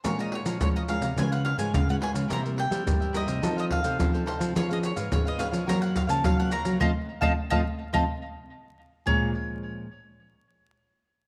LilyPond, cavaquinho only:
\new Staff \with { instrumentName = "Cavaquinho" } { \time 4/4 \key f \phrygian \tempo 4 = 106 <aes' des'' f'' bes''>16 <des'' f'' bes''>16 r16 <des'' f'' bes''>8 <des'' f'' bes''>16 <aes' des'' f'' bes''>16 <des'' f'' bes''>16 <f' ces'' des'' f''>16 <ces'' des'' f''>8 <ces'' des'' f''>16 r16 <ces'' des'' f''>16 <f' ces'' des'' f''>16 <ces'' des'' f''>16 | <e' bes' c'' e''>16 <bes' c'' e''>16 r16 <bes' c'' e''>8 <bes' c'' e''>16 <e' bes' c'' e''>16 <bes' c'' e''>16 <ees' a' c'' f''>16 <a' c'' f''>8 <a' c'' f''>16 r16 <a' c'' f''>16 <ees' a' c'' f''>16 <a' c'' f''>16 | <f' ces'' des'' f''>16 <ces'' des'' f''>16 r16 <ces'' des'' f''>8 <ces'' des'' f''>16 <f' ces'' des'' f''>16 <ces'' des'' f''>16 <ges' bes' des'' f''>16 <bes' des'' f''>8 <bes' des'' f''>16 r16 <bes' des'' f''>16 <ges' bes' des'' f''>16 <bes' des'' f''>16 | <c'' ees'' f''>16 r8 <c'' ees'' f''>16 r16 <c'' ees'' f''>16 r8 <c'' ees'' f''>16 r4. r16 |
<aes' des'' f'' bes''>8 r2. r8 | }